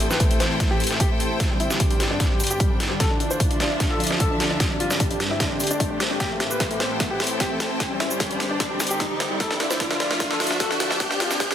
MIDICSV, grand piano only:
0, 0, Header, 1, 2, 480
1, 0, Start_track
1, 0, Tempo, 400000
1, 1682, Time_signature, 4, 2, 24, 8
1, 13856, End_track
2, 0, Start_track
2, 0, Title_t, "Grand piano"
2, 0, Program_c, 0, 0
2, 2, Note_on_c, 0, 57, 58
2, 93, Note_off_c, 0, 57, 0
2, 128, Note_on_c, 0, 71, 90
2, 211, Note_off_c, 0, 71, 0
2, 242, Note_on_c, 0, 57, 59
2, 333, Note_off_c, 0, 57, 0
2, 368, Note_on_c, 0, 57, 60
2, 451, Note_off_c, 0, 57, 0
2, 483, Note_on_c, 0, 72, 87
2, 574, Note_off_c, 0, 72, 0
2, 608, Note_on_c, 0, 57, 61
2, 691, Note_off_c, 0, 57, 0
2, 723, Note_on_c, 0, 57, 59
2, 814, Note_off_c, 0, 57, 0
2, 849, Note_on_c, 0, 67, 88
2, 931, Note_off_c, 0, 67, 0
2, 963, Note_on_c, 0, 57, 60
2, 1054, Note_off_c, 0, 57, 0
2, 1088, Note_on_c, 0, 57, 58
2, 1171, Note_off_c, 0, 57, 0
2, 1202, Note_on_c, 0, 67, 89
2, 1293, Note_off_c, 0, 67, 0
2, 1327, Note_on_c, 0, 57, 59
2, 1410, Note_off_c, 0, 57, 0
2, 1440, Note_on_c, 0, 57, 59
2, 1533, Note_off_c, 0, 57, 0
2, 1567, Note_on_c, 0, 57, 64
2, 1650, Note_off_c, 0, 57, 0
2, 1807, Note_on_c, 0, 55, 61
2, 1890, Note_off_c, 0, 55, 0
2, 1922, Note_on_c, 0, 64, 86
2, 2013, Note_off_c, 0, 64, 0
2, 2046, Note_on_c, 0, 55, 61
2, 2130, Note_off_c, 0, 55, 0
2, 2286, Note_on_c, 0, 55, 62
2, 2370, Note_off_c, 0, 55, 0
2, 2401, Note_on_c, 0, 55, 60
2, 2493, Note_off_c, 0, 55, 0
2, 2526, Note_on_c, 0, 62, 88
2, 2610, Note_off_c, 0, 62, 0
2, 2640, Note_on_c, 0, 55, 62
2, 2732, Note_off_c, 0, 55, 0
2, 2766, Note_on_c, 0, 55, 58
2, 2850, Note_off_c, 0, 55, 0
2, 2880, Note_on_c, 0, 55, 58
2, 2972, Note_off_c, 0, 55, 0
2, 3005, Note_on_c, 0, 67, 90
2, 3090, Note_off_c, 0, 67, 0
2, 3119, Note_on_c, 0, 55, 63
2, 3212, Note_off_c, 0, 55, 0
2, 3245, Note_on_c, 0, 55, 62
2, 3329, Note_off_c, 0, 55, 0
2, 3486, Note_on_c, 0, 55, 63
2, 3570, Note_off_c, 0, 55, 0
2, 3599, Note_on_c, 0, 69, 93
2, 3692, Note_off_c, 0, 69, 0
2, 3726, Note_on_c, 0, 62, 66
2, 3810, Note_off_c, 0, 62, 0
2, 3842, Note_on_c, 0, 62, 64
2, 3933, Note_off_c, 0, 62, 0
2, 3967, Note_on_c, 0, 72, 90
2, 4050, Note_off_c, 0, 72, 0
2, 4080, Note_on_c, 0, 62, 61
2, 4172, Note_off_c, 0, 62, 0
2, 4206, Note_on_c, 0, 62, 64
2, 4290, Note_off_c, 0, 62, 0
2, 4320, Note_on_c, 0, 74, 88
2, 4413, Note_off_c, 0, 74, 0
2, 4447, Note_on_c, 0, 62, 62
2, 4530, Note_off_c, 0, 62, 0
2, 4562, Note_on_c, 0, 62, 59
2, 4653, Note_off_c, 0, 62, 0
2, 4687, Note_on_c, 0, 69, 90
2, 4770, Note_off_c, 0, 69, 0
2, 4801, Note_on_c, 0, 62, 61
2, 4893, Note_off_c, 0, 62, 0
2, 4926, Note_on_c, 0, 62, 63
2, 5010, Note_off_c, 0, 62, 0
2, 5040, Note_on_c, 0, 69, 94
2, 5133, Note_off_c, 0, 69, 0
2, 5168, Note_on_c, 0, 62, 60
2, 5251, Note_off_c, 0, 62, 0
2, 5282, Note_on_c, 0, 62, 60
2, 5373, Note_off_c, 0, 62, 0
2, 5407, Note_on_c, 0, 62, 65
2, 5490, Note_off_c, 0, 62, 0
2, 5648, Note_on_c, 0, 62, 63
2, 5731, Note_off_c, 0, 62, 0
2, 5761, Note_on_c, 0, 65, 86
2, 5853, Note_off_c, 0, 65, 0
2, 5888, Note_on_c, 0, 62, 64
2, 5971, Note_off_c, 0, 62, 0
2, 6128, Note_on_c, 0, 62, 61
2, 6211, Note_off_c, 0, 62, 0
2, 6242, Note_on_c, 0, 62, 61
2, 6333, Note_off_c, 0, 62, 0
2, 6369, Note_on_c, 0, 64, 90
2, 6451, Note_off_c, 0, 64, 0
2, 6484, Note_on_c, 0, 62, 60
2, 6574, Note_off_c, 0, 62, 0
2, 6610, Note_on_c, 0, 62, 58
2, 6692, Note_off_c, 0, 62, 0
2, 6722, Note_on_c, 0, 62, 62
2, 6814, Note_off_c, 0, 62, 0
2, 6848, Note_on_c, 0, 62, 92
2, 6931, Note_off_c, 0, 62, 0
2, 6962, Note_on_c, 0, 62, 63
2, 7054, Note_off_c, 0, 62, 0
2, 7089, Note_on_c, 0, 62, 61
2, 7171, Note_off_c, 0, 62, 0
2, 7328, Note_on_c, 0, 62, 65
2, 7411, Note_off_c, 0, 62, 0
2, 7443, Note_on_c, 0, 67, 95
2, 7534, Note_off_c, 0, 67, 0
2, 7569, Note_on_c, 0, 57, 65
2, 7652, Note_off_c, 0, 57, 0
2, 7682, Note_on_c, 0, 57, 62
2, 7773, Note_off_c, 0, 57, 0
2, 7807, Note_on_c, 0, 71, 86
2, 7890, Note_off_c, 0, 71, 0
2, 7921, Note_on_c, 0, 57, 64
2, 8013, Note_off_c, 0, 57, 0
2, 8047, Note_on_c, 0, 57, 61
2, 8130, Note_off_c, 0, 57, 0
2, 8160, Note_on_c, 0, 72, 93
2, 8253, Note_off_c, 0, 72, 0
2, 8286, Note_on_c, 0, 57, 61
2, 8370, Note_off_c, 0, 57, 0
2, 8400, Note_on_c, 0, 57, 60
2, 8492, Note_off_c, 0, 57, 0
2, 8527, Note_on_c, 0, 67, 86
2, 8610, Note_off_c, 0, 67, 0
2, 8641, Note_on_c, 0, 57, 61
2, 8733, Note_off_c, 0, 57, 0
2, 8766, Note_on_c, 0, 57, 62
2, 8850, Note_off_c, 0, 57, 0
2, 8879, Note_on_c, 0, 67, 92
2, 8972, Note_off_c, 0, 67, 0
2, 9005, Note_on_c, 0, 57, 65
2, 9089, Note_off_c, 0, 57, 0
2, 9120, Note_on_c, 0, 57, 61
2, 9212, Note_off_c, 0, 57, 0
2, 9247, Note_on_c, 0, 57, 64
2, 9330, Note_off_c, 0, 57, 0
2, 9487, Note_on_c, 0, 55, 62
2, 9570, Note_off_c, 0, 55, 0
2, 9601, Note_on_c, 0, 64, 86
2, 9693, Note_off_c, 0, 64, 0
2, 9728, Note_on_c, 0, 55, 64
2, 9811, Note_off_c, 0, 55, 0
2, 9968, Note_on_c, 0, 55, 66
2, 10051, Note_off_c, 0, 55, 0
2, 10207, Note_on_c, 0, 62, 94
2, 10290, Note_off_c, 0, 62, 0
2, 10321, Note_on_c, 0, 55, 64
2, 10413, Note_off_c, 0, 55, 0
2, 10447, Note_on_c, 0, 55, 64
2, 10531, Note_off_c, 0, 55, 0
2, 10562, Note_on_c, 0, 55, 60
2, 10654, Note_off_c, 0, 55, 0
2, 10687, Note_on_c, 0, 67, 97
2, 10770, Note_off_c, 0, 67, 0
2, 10803, Note_on_c, 0, 55, 64
2, 10894, Note_off_c, 0, 55, 0
2, 10928, Note_on_c, 0, 55, 64
2, 11011, Note_off_c, 0, 55, 0
2, 11168, Note_on_c, 0, 55, 68
2, 11251, Note_off_c, 0, 55, 0
2, 11281, Note_on_c, 0, 69, 95
2, 11373, Note_off_c, 0, 69, 0
2, 11407, Note_on_c, 0, 62, 65
2, 11490, Note_off_c, 0, 62, 0
2, 11522, Note_on_c, 0, 62, 64
2, 11613, Note_off_c, 0, 62, 0
2, 11647, Note_on_c, 0, 72, 90
2, 11730, Note_off_c, 0, 72, 0
2, 11761, Note_on_c, 0, 62, 64
2, 11853, Note_off_c, 0, 62, 0
2, 11888, Note_on_c, 0, 62, 65
2, 11971, Note_off_c, 0, 62, 0
2, 12002, Note_on_c, 0, 74, 93
2, 12093, Note_off_c, 0, 74, 0
2, 12129, Note_on_c, 0, 62, 62
2, 12211, Note_off_c, 0, 62, 0
2, 12243, Note_on_c, 0, 62, 65
2, 12334, Note_off_c, 0, 62, 0
2, 12368, Note_on_c, 0, 69, 93
2, 12451, Note_off_c, 0, 69, 0
2, 12483, Note_on_c, 0, 62, 65
2, 12574, Note_off_c, 0, 62, 0
2, 12607, Note_on_c, 0, 62, 63
2, 12690, Note_off_c, 0, 62, 0
2, 12722, Note_on_c, 0, 69, 98
2, 12813, Note_off_c, 0, 69, 0
2, 12848, Note_on_c, 0, 62, 64
2, 12931, Note_off_c, 0, 62, 0
2, 12961, Note_on_c, 0, 62, 63
2, 13053, Note_off_c, 0, 62, 0
2, 13087, Note_on_c, 0, 62, 65
2, 13170, Note_off_c, 0, 62, 0
2, 13327, Note_on_c, 0, 62, 64
2, 13410, Note_off_c, 0, 62, 0
2, 13441, Note_on_c, 0, 65, 87
2, 13533, Note_off_c, 0, 65, 0
2, 13568, Note_on_c, 0, 62, 63
2, 13651, Note_off_c, 0, 62, 0
2, 13807, Note_on_c, 0, 62, 66
2, 13856, Note_off_c, 0, 62, 0
2, 13856, End_track
0, 0, End_of_file